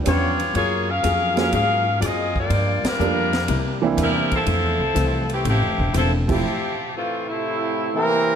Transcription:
0.04 0.54 E2 medium
0.04 0.41 G2 medium
0.04 0.42 F3 medium
0.04 0.35 B3 medium
0.04 0.42 B3 medium
0.04 0.52 B3 medium
0.04 0.36 C#4 soft
0.04 0.35 D4 soft
0.04 0.36 F4 soft
0.04 0.36 G4 medium
0.04 hi-hat pedal medium
0.04 ride medium
0.08 0.42 C#4 medium
0.08 0.53 F4 medium
0.08 0.53 G4 medium
0.08 0.53 C#5 medium
0.40 ride soft
0.54 1.03 F#2 medium
0.54 0.90 F#3 soft
0.54 0.90 A#3 soft
0.54 0.87 A#3 medium
0.54 0.91 F4 medium
0.54 0.87 F4 medium
0.54 0.87 G#4 medium
0.54 0.91 G#4 medium
0.54 0.87 C#5 loud
0.54 ride medium
0.89 1.38 C#4 loud
0.89 1.38 G#4 loud
0.89 1.38 A#4 medium
0.89 1.37 F5 loud
1.03 1.52 F2 medium
1.03 1.39 F#3 medium
1.03 1.39 A#3 medium
1.03 1.40 F4 medium
1.03 1.40 G#4 medium
1.03 hi-hat pedal medium
1.03 ride medium
1.36 1.51 F#3 medium
1.36 1.51 A#3 medium
1.36 1.51 C#4 medium
1.36 1.53 C#4 medium
1.36 1.51 F4 medium
1.36 1.52 G#4 medium
1.36 1.53 G#4 medium
1.36 1.52 A#4 medium
1.36 1.52 F5 medium
1.36 snare medium
1.36 ride soft
1.52 2.01 G#2 medium
1.52 1.88 F#3 soft
1.52 1.88 A#3 soft
1.52 1.96 C#4 medium
1.52 1.89 F4 soft
1.52 1.96 G#4 medium
1.52 1.89 G#4 medium
1.52 1.95 A#4 medium
1.52 1.96 F5 loud
1.52 ride medium
2.00 2.50 F#2 medium
2.00 2.37 F#3 medium
2.00 2.37 A#3 medium
2.00 2.37 F4 medium
2.00 2.38 G#4 medium
2.00 2.03 D5 medium
2.00 hi-hat pedal medium
2.00 ride medium
2.04 2.37 C4 medium
2.04 2.37 F4 medium
2.04 2.37 G#4 medium
2.04 2.37 D#5 medium
2.36 2.83 A#3 medium
2.36 2.83 F4 medium
2.36 2.83 G4 medium
2.36 2.83 D5 medium
2.36 kick medium
2.50 2.86 G2 medium
2.50 2.82 G2 medium
2.50 2.86 F3 medium
2.50 2.87 A#3 medium
2.50 2.87 D4 medium
2.50 ride medium
2.84 3.85 A#4 medium
2.84 muted upright bass stroke soft
2.84 snare medium
2.84 ride medium
2.88 3.85 G3 medium
2.88 3.85 D4 medium
2.88 3.51 F4 medium
2.99 3.48 F2 medium
2.99 3.35 G2 medium
2.99 3.35 F3 medium
2.99 3.31 G3 medium
2.99 3.35 A#3 medium
2.99 3.31 A#3 medium
2.99 3.36 D4 medium
2.99 3.31 D4 medium
2.99 3.32 F4 medium
2.99 3.31 A4 medium
2.99 hi-hat pedal medium
3.33 snare medium
3.33 ride soft
3.48 3.97 C2 medium
3.48 3.84 C3 medium
3.48 3.84 G3 medium
3.48 3.85 A#3 medium
3.48 3.85 E4 medium
3.48 ride medium
3.82 4.44 E3 medium
3.82 4.44 A#3 medium
3.82 4.44 C4 medium
3.82 4.45 D4 medium
3.82 4.45 E4 medium
3.97 4.46 E2 medium
3.97 4.33 C3 medium
3.97 4.34 G3 medium
3.97 4.34 A#3 medium
3.97 4.31 C4 medium
3.97 4.34 E4 medium
3.97 hi-hat pedal medium
3.97 ride medium
4.01 4.32 G3 medium
4.01 4.32 E4 medium
4.01 4.32 A#4 loud
4.31 kick medium
4.31 ride soft
4.36 5.28 F3 loud
4.36 5.28 C4 loud
4.36 5.28 E4 loud
4.36 5.28 A4 loud
4.46 4.83 F2 medium
4.46 4.63 F2 medium
4.46 4.83 E3 medium
4.46 4.84 A3 medium
4.46 4.84 C4 medium
4.46 ride medium
4.63 4.78 E2 medium
4.79 4.95 C2 medium
4.94 5.44 C2 medium
4.94 5.31 F2 medium
4.94 5.31 E3 medium
4.94 5.32 A3 medium
4.94 5.32 C4 medium
4.94 hi-hat pedal soft
4.94 ride medium
5.29 5.47 E3 medium
5.29 5.47 G4 medium
5.29 ride soft
5.34 5.47 A3 medium
5.34 5.47 C4 medium
5.44 5.62 A1 medium
5.44 5.80 F2 soft
5.44 5.81 E3 medium
5.44 5.81 A3 medium
5.44 5.82 C4 medium
5.44 ride medium
5.49 5.93 F3 medium
5.49 5.93 C4 medium
5.49 5.93 E4 medium
5.49 5.93 G4 loud
5.62 5.78 F1 medium
5.78 5.94 E1 medium
5.78 kick soft
5.93 6.43 E1 medium
5.93 6.30 F2 medium
5.93 6.30 E3 medium
5.93 6.12 F3 medium
5.93 6.30 A3 medium
5.93 6.30 C4 medium
5.93 6.12 C4 medium
5.93 6.12 E4 medium
5.93 6.11 A4 loud
5.93 hi-hat pedal medium
5.93 ride medium
6.28 6.42 F3 medium
6.28 6.91 F3 medium
6.28 6.43 A3 medium
6.28 6.43 C4 medium
6.28 6.91 C4 medium
6.28 6.43 E4 medium
6.28 6.90 E4 medium
6.28 6.43 G4 medium
6.28 kick medium
6.28 crash medium
6.32 6.91 G4 loud
6.95 7.28 E3 medium
6.95 7.27 A3 medium
6.95 7.27 C4 medium
6.95 7.29 F4 medium
7.27 8.22 A2 medium
7.27 7.90 C3 medium
7.27 8.22 F3 medium
7.27 8.22 A3 medium
7.27 8.22 C4 medium
7.27 8.22 E4 medium
7.92 8.35 C3 medium
7.92 8.35 E3 medium
7.92 8.35 A#3 medium
7.92 8.35 A#4 loud
7.96 8.35 C4 medium
7.96 8.35 E4 medium

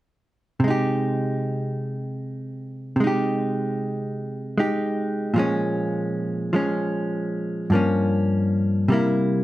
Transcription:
0.60 2.95 C3 soft
0.64 2.99 G#3 soft
0.64 3.01 D#4 soft
0.70 3.03 G4 soft
2.96 5.33 C3 soft
3.00 4.56 G#3 soft
3.00 4.58 D#4 soft
3.07 4.59 G4 soft
4.58 5.35 G#3 soft
4.58 5.36 D#4 soft
4.58 5.36 G4 soft
5.34 7.70 A#2 soft
5.34 6.52 F3 soft
5.34 6.53 G#3 soft
5.39 6.55 C#4 medium
6.53 7.71 F3 soft
6.53 7.72 G#3 soft
6.53 7.72 C#4 soft
7.70 8.88 G2 soft
7.70 8.89 F3 soft
7.70 8.90 A#3 soft
7.75 8.91 C#4 soft
8.88 9.44 C3 soft
8.88 9.44 G3 soft
8.88 9.44 A#3 medium
8.93 9.44 E4 soft

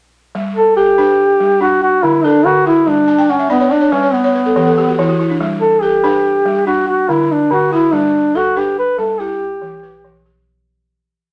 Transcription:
0.35 0.77 G3 medium
0.56 0.75 A4 medium
0.76 1.57 G4 medium
0.76 1.40 A4 medium
0.98 1.40 D4 medium
0.98 1.61 B4 medium
1.40 1.61 G3 medium
1.61 2.24 D4 medium
1.61 1.81 F#4 medium
1.82 2.04 F#4 medium
2.03 2.45 D3 medium
2.03 2.26 E4 medium
2.24 2.47 D4 medium
2.24 2.87 A4 medium
2.45 2.87 D3 medium
2.45 2.66 F#4 medium
2.66 2.90 E4 medium
2.66 3.08 F#4 medium
2.87 3.29 G3 medium
2.87 3.32 D4 medium
3.08 3.27 A5 medium
3.18 3.38 G5 medium
3.29 3.50 C#4 medium
3.29 3.49 F#5 medium
3.40 3.59 E5 medium
3.50 3.73 B3 medium
3.50 3.92 D4 medium
3.50 3.69 D5 medium
3.60 3.80 C#5 medium
3.71 3.94 D4 medium
3.71 3.91 D5 medium
3.81 4.01 C#5 medium
3.92 4.13 G3 medium
3.92 4.15 C#4 medium
3.92 4.12 B4 medium
4.03 4.22 C#5 medium
4.13 5.18 B3 medium
4.13 4.33 B4 medium
4.24 4.43 C#5 medium
4.35 4.54 B4 medium
4.46 4.65 A4 medium
4.56 4.97 E3 medium
4.56 4.75 G4 medium
4.67 4.86 A4 medium
4.78 4.97 G4 medium
4.88 5.07 F#4 medium
4.99 5.40 E3 medium
4.99 5.18 E4 medium
5.09 5.28 F#4 medium
5.19 5.38 E4 medium
5.30 5.49 D4 medium
5.41 5.82 G3 medium
5.61 5.84 A4 medium
5.82 6.66 G4 medium
5.82 6.45 A4 medium
6.04 6.45 D4 medium
6.04 6.66 B4 medium
6.45 6.66 G3 medium
6.66 7.29 D4 medium
6.66 6.86 F#4 medium
6.88 7.12 F#4 medium
7.09 7.50 D3 medium
7.09 7.33 E4 medium
7.32 7.51 D4 medium
7.51 7.93 D3 medium
7.51 7.71 F#4 medium
7.72 7.95 E4 medium
7.72 8.14 F#4 medium
7.93 8.35 G3 medium
7.93 8.38 D4 medium
8.35 8.59 F#4 medium
8.35 8.98 A4 medium
8.56 8.98 D4 medium
8.56 8.77 G4 medium
8.56 9.20 B4 medium
8.79 8.98 B4 medium
8.98 9.19 G3 medium
8.98 9.22 A4 medium
9.20 9.83 E4 medium
9.20 10.26 G4 medium
9.62 10.03 E3 medium
9.83 10.46 B4 medium
10.05 10.46 E3 medium
10.26 10.68 G4 medium

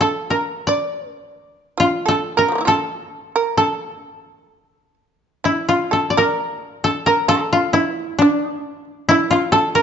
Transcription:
0.00 1.38 E4 medium
0.00 0.36 A4 medium
0.00 0.29 A4 medium
0.30 2.14 A#4 medium
0.30 0.65 A#4 medium
0.67 2.27 D5 medium
0.67 1.11 D5 medium
1.11 1.30 A#4 medium
1.78 2.05 F4 medium
1.78 3.99 F4 loud
2.06 2.34 A4 medium
2.06 2.44 A4 loud
2.37 2.65 A#4 medium
2.37 2.74 A#4 medium
2.48 2.58 F3 soft
2.48 2.55 A3 soft
2.55 2.68 A#3 soft
2.55 2.60 D4 soft
2.61 2.65 E4 medium
2.65 2.78 F4 medium
2.65 3.31 A4 medium
2.65 3.57 A4 loud
3.36 3.56 A#4 medium
3.57 5.48 A4 medium
3.57 4.94 A4 medium
5.44 5.67 E4 medium
5.44 5.75 E4 medium
5.69 7.52 F4 medium
5.69 5.91 F4 medium
5.91 6.14 A4 medium
5.91 6.24 A4 medium
6.10 7.70 D5 medium
6.17 7.04 A#4 medium
6.17 6.90 A#4 medium
6.84 7.12 A4 loud
7.06 7.35 A#4 loud
7.06 7.28 A#4 medium
7.28 7.71 A4 medium
7.28 9.19 A4 loud
7.53 7.79 F4 medium
7.73 9.08 E4 medium
7.73 8.17 E4 medium
8.19 9.82 D4 medium
8.19 8.84 D4 medium
9.09 9.37 E4 loud
9.09 9.31 E4 medium
9.31 9.82 F4 medium
9.31 9.53 F4 medium
9.52 9.81 A4 loud
9.52 9.74 A4 medium
9.75 9.82 A#4 medium

